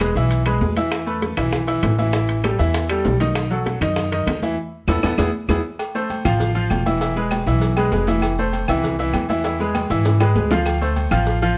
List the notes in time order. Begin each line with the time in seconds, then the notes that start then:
Already playing: E1
0.00 G#3 G#4 B4, high conga, high timbale, low timbale, claves, maracas
0.16 B1 E3 E4 E5, high conga, maracas
0.31 high conga, high timbale, maracas
0.46 G#3 G#4 B4, high conga, high timbale, claves, maracas
0.61 E2, high conga, low timbale, maracas
0.77 E3 E4 E5, high conga, high timbale, maracas
0.92 high bongo, high conga, high timbale, claves, maracas
1.06 A3 A4 B4, high bongo, high conga, maracas
1.22 high bongo, high conga, high timbale, low timbale, maracas
1.37 B1 E3 E4 E5, high bongo, high conga, low conga, high timbale, claves, maracas
1.53 high bongo, high conga, low conga, maracas
1.67 E3 E4 E5, high bongo, high conga, high timbale, maracas
1.83 A1, high bongo, low bongo, high conga, high timbale, low timbale, claves, maracas
1.98 E3 E4 E5, high conga, maracas
2.13 E3 E4 E5, high bongo, high timbale, maracas
2.29 high bongo, high conga, high timbale, maracas
2.44 G3 G4 A4, high bongo, high conga, high timbale, low timbale, claves, maracas
2.59 E2 E3 E4 E5, high bongo, high conga, maracas
2.74 high bongo, high conga, high timbale, maracas
2.89 G3 G4 A4, high bongo, high conga, high timbale, claves, maracas
3.05 B1, high bongo, low bongo, high conga, low timbale, maracas
3.20 D#3 D#4 D#5, high conga, high timbale, maracas
3.35 high bongo, high conga, high timbale, claves, maracas
3.51 F#3 F#4 A4, high bongo, high conga, maracas
3.66 high bongo, high conga, high timbale, low timbale, maracas
3.81 F#2 D#3 D#4 D#5, high bongo, high conga, low conga, high timbale, claves, maracas
3.96 high bongo, high conga, low conga, maracas
4.12 D#3 D#4 D#5, high bongo, high conga, high timbale, maracas
4.27 E2, high bongo, low bongo, high conga, high timbale, low timbale, claves, maracas
4.42 E3 E4 E5, high conga, maracas
4.88 E2 B3 E4 A4, low bongo, high conga, high timbale, claves, maracas
5.03 E2 B3 E4 A4, low bongo, high conga, high timbale, claves, maracas
5.18 E2 B3 E4 G#4, low bongo, high conga, high timbale, claves, maracas
5.49 E2 B3 E4 G#4, low bongo, high conga, high timbale, claves, maracas
5.79 cowbell, high conga, low agogo, claves, maracas
5.95 A3 A4 C5, high conga, maracas
6.10 cowbell, high conga, low timbale, low agogo, maracas
6.25 A1 F3 F4 F5, high conga, low conga, low agogo, claves, maracas
6.40 cowbell, high conga, low conga, maracas
6.55 F3 F4 F5, high conga, maracas
6.70 E1, cowbell, high conga, low timbale, low agogo, claves, maracas
6.86 E3 E4 E5, high conga, low agogo, maracas
7.01 E3 E4 E5, cowbell, high conga, low agogo, maracas
7.16 G#3 G#4 B4, high conga, maracas
7.31 cowbell, high conga, low timbale, low agogo, claves, maracas
7.46 B1 E3 E4 E5, cowbell, maracas
7.61 cowbell, high conga, low agogo, maracas
7.77 G#3 G#4 B4, high conga, low agogo, claves, maracas
7.92 F1 G#3 G#4 B4, cowbell, high conga, low timbale, maracas
8.07 E3 E4 E5, cowbell, high conga, low agogo, maracas
8.22 cowbell, high conga, low agogo, claves, maracas
8.38 A3 A4 C5, high conga, maracas
8.53 cowbell, high conga, low timbale, low agogo, maracas
8.68 C2 E3 E4 E5, high conga, low conga, low agogo, claves, maracas
8.84 cowbell, high conga, low conga, maracas
8.99 E3 E4 E5, high conga, maracas
9.14 E2, cowbell, high conga, low timbale, low agogo, claves, maracas
9.29 E3 E4 E5, high conga, low agogo, maracas
9.44 E3 E4 E5, cowbell, high conga, low agogo, maracas
9.59 G#3 G#4 B4, high conga, maracas
9.75 cowbell, high conga, low timbale, low agogo, claves, maracas
9.90 G#2 E3 E4 E5, cowbell, high conga, maracas
10.05 cowbell, high bongo, high conga, high timbale, low agogo, maracas
10.20 G#3 G#4 B4, high conga, high timbale, low agogo, claves, maracas
10.35 D2 G#3 G#4 B4, cowbell, high conga, low timbale, maracas
10.51 F3 F4 F5, cowbell, low bongo, high conga, low timbale, low agogo, maracas
10.66 cowbell, high conga, low agogo, claves, maracas
10.81 A3 A4 C5, high conga, maracas
10.96 cowbell, high conga, low timbale, low agogo, maracas
11.11 A1 F3 F4 F5, high conga, low conga, low agogo, claves, maracas
11.26 cowbell, high conga, maracas
11.42 F3 F4 F5, high conga, maracas